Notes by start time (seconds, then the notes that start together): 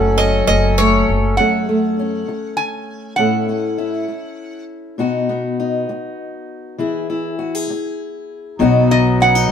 Already playing: F#1 F#2 F#3 A3 C#4 A4 F#5
0.18 C#4 D#5
0.47 F#1 D#5, muted steel-string acoustic guitar stroke
0.78 A3 C#5
1.09 F#1
1.37 F#2 A3 C#4 A4 F#5
1.69 A3
1.99 C#4
2.28 muted steel-string acoustic guitar stroke
2.57 G#5
3.16 A2 C#4 E4 A4 F#5
3.49 C#4
3.78 E4
4.08 muted steel-string acoustic guitar stroke
4.98 B2 B3 D#4 F#4
5.29 B3
5.60 D#4
5.89 muted steel-string acoustic guitar stroke
6.78 E3 E4 G#4
7.10 E4
7.39 F#4
7.55 G#4
7.70 muted steel-string acoustic guitar stroke
8.58 B1 B2 F#3 B3 D#4 F#4
8.91 D#5
9.20 C#4 F#5
9.35 D#4